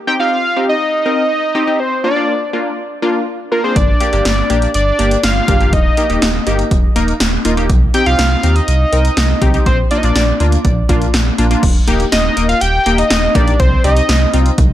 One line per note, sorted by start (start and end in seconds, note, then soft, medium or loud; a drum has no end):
0.07 0.16 C4 medium
0.07 0.16 D#4 medium
0.07 0.16 G4 medium
0.07 0.13 G5 loud
0.19 0.37 C4 medium
0.19 0.37 D#4 medium
0.19 0.37 G4 medium
0.19 0.65 F5 loud
0.56 0.74 C4 medium
0.56 0.74 D#4 medium
0.56 0.74 G4 medium
0.69 1.81 D#5 loud
1.06 1.23 C4 medium
1.06 1.23 D#4 medium
1.06 1.23 A#4 medium
1.55 1.64 C4 medium
1.55 1.64 D#4 medium
1.55 1.64 G4 loud
1.67 1.79 C4 medium
1.67 1.79 D#4 medium
1.67 1.80 G4 medium
1.80 2.04 C5 medium
2.04 2.13 A#3 medium
2.04 2.13 D4 medium
2.04 2.13 F4 medium
2.04 2.50 D5 medium
2.16 2.34 A#3 medium
2.16 2.34 D4 medium
2.16 2.34 F4 medium
2.53 2.71 A#3 medium
2.53 2.71 D4 medium
2.53 2.71 F4 medium
3.02 3.20 A#3 medium
3.02 3.20 D4 medium
3.02 3.20 F4 loud
3.52 3.60 A#3 medium
3.52 3.60 D4 medium
3.52 3.60 F4 medium
3.52 3.63 A#4 medium
3.64 3.76 A#3 medium
3.64 3.76 D4 medium
3.64 3.76 G#4 medium
3.64 3.75 C5 medium
3.76 3.93 G1 loud
3.76 4.71 D5 loud
3.76 kick loud
3.76 closed hi-hat medium
4.00 4.09 A#3 medium
4.00 4.09 D4 medium
4.00 4.09 G4 medium
4.00 closed hi-hat medium
4.13 4.22 G1 medium
4.13 4.30 A#3 medium
4.13 4.30 D4 medium
4.13 4.30 G4 medium
4.13 closed hi-hat soft
4.25 4.43 G1 loud
4.25 snare loud
4.25 closed hi-hat medium
4.50 4.67 A#1 medium
4.50 4.67 A#3 medium
4.50 4.67 D4 medium
4.50 4.67 G4 loud
4.50 closed hi-hat medium
4.62 closed hi-hat soft
4.74 4.92 G1 loud
4.74 5.20 D5 loud
4.74 closed hi-hat medium
4.99 5.16 G1 medium
4.99 5.16 A#3 medium
4.99 5.16 D4 medium
4.99 5.16 G4 medium
4.99 closed hi-hat medium
5.11 closed hi-hat medium
5.23 5.41 G1 loud
5.23 5.75 F5 loud
5.23 snare loud
5.23 closed hi-hat medium
5.48 5.74 G1 loud
5.48 5.57 A#3 medium
5.48 5.57 D4 medium
5.48 5.57 G4 medium
5.48 kick loud
5.48 closed hi-hat medium
5.61 5.73 A#3 medium
5.61 5.73 D4 medium
5.61 5.73 G4 medium
5.61 closed hi-hat soft
5.73 5.90 D#1 loud
5.73 6.47 D#5 loud
5.73 kick loud
5.73 closed hi-hat medium
5.97 6.06 A#3 medium
5.97 6.06 D#4 medium
5.97 6.06 G4 medium
5.97 closed hi-hat medium
6.10 6.18 D#1 loud
6.10 6.27 A#3 medium
6.10 6.27 D#4 medium
6.10 6.27 G4 medium
6.10 closed hi-hat soft
6.22 6.39 D#1 loud
6.22 snare loud
6.22 closed hi-hat medium
6.47 6.64 G1 medium
6.47 6.64 A#3 medium
6.47 6.64 D#4 medium
6.47 6.64 G4 medium
6.47 closed hi-hat medium
6.59 closed hi-hat soft
6.71 6.88 D#1 loud
6.71 kick medium
6.71 closed hi-hat medium
6.96 7.13 D#1 medium
6.96 7.13 A#3 medium
6.96 7.13 D#4 medium
6.96 7.13 A#4 loud
6.96 closed hi-hat medium
7.08 closed hi-hat medium
7.20 7.38 D#1 medium
7.20 snare loud
7.20 closed hi-hat medium
7.45 7.71 D#1 loud
7.45 7.54 A#3 medium
7.45 7.54 D#4 medium
7.45 7.54 F4 medium
7.45 closed hi-hat medium
7.57 7.70 A#3 medium
7.57 7.70 D#4 medium
7.57 7.70 G4 medium
7.57 closed hi-hat soft
7.70 7.87 C2 loud
7.70 kick loud
7.70 closed hi-hat medium
7.94 8.03 C4 medium
7.94 8.03 D#4 medium
7.94 8.03 G4 medium
7.94 8.06 G5 loud
7.94 closed hi-hat medium
8.06 8.15 C2 loud
8.06 8.24 C4 medium
8.06 8.24 D#4 medium
8.06 8.24 G4 medium
8.06 8.57 F5 loud
8.06 closed hi-hat soft
8.19 8.36 C2 loud
8.19 snare loud
8.19 closed hi-hat medium
8.43 8.61 D#2 medium
8.43 8.61 C4 medium
8.43 8.61 D#4 medium
8.43 8.61 G4 medium
8.43 closed hi-hat medium
8.56 9.66 D#5 loud
8.56 closed hi-hat soft
8.68 8.85 C2 loud
8.68 closed hi-hat medium
8.92 9.10 C2 loud
8.92 9.10 C4 medium
8.92 9.10 D#4 medium
8.92 9.10 A#4 medium
8.92 closed hi-hat medium
9.05 closed hi-hat soft
9.17 9.34 C2 loud
9.17 snare loud
9.17 closed hi-hat medium
9.42 9.59 C2 loud
9.42 9.50 C4 medium
9.42 9.50 D#4 medium
9.42 9.50 G4 loud
9.42 kick loud
9.42 closed hi-hat medium
9.54 9.66 C4 medium
9.54 9.66 D#4 medium
9.54 9.66 G4 medium
9.54 closed hi-hat soft
9.66 9.83 A#1 loud
9.66 9.77 C5 medium
9.66 kick loud
9.66 closed hi-hat medium
9.91 10.00 A#3 medium
9.91 10.00 D4 medium
9.91 10.00 F4 medium
9.91 9.99 D5 medium
9.91 closed hi-hat medium
9.98 10.06 D#5 medium
10.03 10.12 A#1 loud
10.03 10.21 A#3 medium
10.03 10.21 D4 medium
10.03 10.21 F4 medium
10.03 10.40 D5 medium
10.03 closed hi-hat soft
10.15 10.33 A#1 loud
10.15 snare loud
10.15 closed hi-hat medium
10.40 10.57 D2 medium
10.40 10.58 A#3 medium
10.40 10.58 D4 medium
10.40 10.58 F4 medium
10.40 closed hi-hat medium
10.52 closed hi-hat soft
10.65 10.82 A#1 loud
10.65 kick medium
10.65 closed hi-hat medium
10.89 11.06 A#1 loud
10.89 11.07 A#3 medium
10.89 11.07 D4 medium
10.89 11.07 F4 loud
10.89 kick medium
10.89 closed hi-hat medium
11.02 closed hi-hat medium
11.14 11.31 A#1 medium
11.14 snare loud
11.14 closed hi-hat medium
11.38 11.56 A#1 medium
11.38 11.47 A#3 medium
11.38 11.47 D4 medium
11.38 11.47 F4 medium
11.38 closed hi-hat medium
11.51 11.63 A#3 medium
11.51 11.63 D4 medium
11.51 11.63 F4 medium
11.51 closed hi-hat soft
11.63 11.80 D#1 loud
11.63 kick loud
11.63 closed hi-hat medium
11.63 crash loud
11.87 12.05 D#1 loud
11.87 12.05 A#3 medium
11.87 12.05 D#4 medium
11.87 12.05 G4 loud
11.87 closed hi-hat medium
12.00 closed hi-hat medium
12.12 12.29 D#1 loud
12.12 12.46 D#5 loud
12.12 snare loud
12.12 closed hi-hat medium
12.37 12.54 D#1 loud
12.37 12.54 A#3 medium
12.37 12.54 D#4 medium
12.37 12.54 A#4 medium
12.37 closed hi-hat medium
12.49 12.63 F5 loud
12.49 closed hi-hat soft
12.61 12.79 D#1 loud
12.61 13.00 G5 loud
12.61 closed hi-hat medium
12.86 13.03 D#1 loud
12.86 13.04 A#3 medium
12.86 13.03 D#4 medium
12.86 13.03 G4 medium
12.86 closed hi-hat medium
12.98 13.37 D#5 loud
12.98 closed hi-hat medium
13.10 13.28 D#1 loud
13.10 snare loud
13.10 closed hi-hat medium
13.35 13.52 A#1 medium
13.35 13.53 A#3 medium
13.35 13.53 D#4 medium
13.35 13.53 G4 medium
13.35 13.59 D5 loud
13.35 kick loud
13.35 closed hi-hat medium
13.48 closed hi-hat soft
13.60 13.77 C2 loud
13.60 13.83 C5 loud
13.60 kick loud
13.60 closed hi-hat medium
13.84 14.01 C2 loud
13.84 14.02 C4 medium
13.84 14.02 D#4 medium
13.84 14.02 G4 medium
13.84 14.54 D#5 loud
13.84 closed hi-hat medium
13.97 closed hi-hat medium
14.09 14.26 C2 loud
14.09 snare loud
14.09 closed hi-hat medium
14.34 14.51 C2 loud
14.34 14.51 C4 medium
14.34 14.51 D#4 medium
14.34 14.51 F4 medium
14.34 closed hi-hat medium
14.46 closed hi-hat medium
14.58 14.73 C2 loud
14.58 kick loud
14.58 closed hi-hat medium